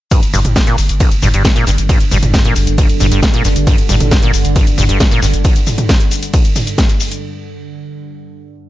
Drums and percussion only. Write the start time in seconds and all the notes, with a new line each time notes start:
0.11 kick, closed hi-hat, ride, shaker
0.23 closed hi-hat, shaker
0.34 mid tom, open hi-hat, shaker
0.45 closed hi-hat, mid tom, shaker
0.56 kick, snare, closed hi-hat, ride, shaker
0.67 closed hi-hat, shaker
0.78 open hi-hat, shaker
0.89 closed hi-hat, shaker
1.00 kick, closed hi-hat, ride, shaker
1.11 closed hi-hat, shaker
1.23 mid tom, open hi-hat, shaker
1.34 closed hi-hat, shaker
1.45 kick, snare, closed hi-hat, ride, shaker
1.56 closed hi-hat, shaker
1.67 open hi-hat, shaker
1.78 closed hi-hat, shaker
1.89 kick, closed hi-hat, ride, shaker
2.00 closed hi-hat, shaker
2.12 mid tom, open hi-hat, shaker
2.23 closed hi-hat, mid tom, shaker
2.34 kick, snare, closed hi-hat, ride, shaker
2.45 closed hi-hat, shaker
2.56 open hi-hat, shaker
2.67 closed hi-hat, shaker
2.78 kick, closed hi-hat, ride, shaker
2.89 closed hi-hat, shaker
3.00 mid tom, open hi-hat, shaker
3.12 closed hi-hat, shaker
3.23 kick, snare, closed hi-hat, ride, shaker
3.34 closed hi-hat, shaker
3.45 open hi-hat, shaker
3.56 closed hi-hat, shaker
3.67 kick, closed hi-hat, ride, shaker
3.78 closed hi-hat, shaker
3.89 mid tom, open hi-hat, shaker
4.00 closed hi-hat, mid tom, shaker
4.11 kick, snare, closed hi-hat, ride, shaker
4.23 closed hi-hat, shaker
4.34 open hi-hat, shaker
4.45 closed hi-hat, shaker
4.56 kick, closed hi-hat, ride, shaker
4.67 closed hi-hat, shaker
4.78 mid tom, open hi-hat, shaker
4.89 closed hi-hat, shaker
5.00 kick, snare, closed hi-hat, ride, shaker
5.11 closed hi-hat, shaker
5.22 open hi-hat, shaker
5.34 closed hi-hat, shaker
5.45 kick, closed hi-hat, ride, shaker
5.56 closed hi-hat, shaker
5.67 mid tom, open hi-hat, shaker
5.78 closed hi-hat, mid tom, shaker
5.89 kick, snare, closed hi-hat, ride, shaker
6.00 closed hi-hat, shaker
6.11 open hi-hat, shaker
6.23 closed hi-hat, shaker
6.34 kick, closed hi-hat, ride, shaker
6.45 closed hi-hat, shaker
6.56 mid tom, open hi-hat, shaker
6.67 closed hi-hat, shaker
6.78 kick, snare, closed hi-hat, ride, shaker
6.89 closed hi-hat, shaker
7.00 open hi-hat, shaker
7.12 closed hi-hat, shaker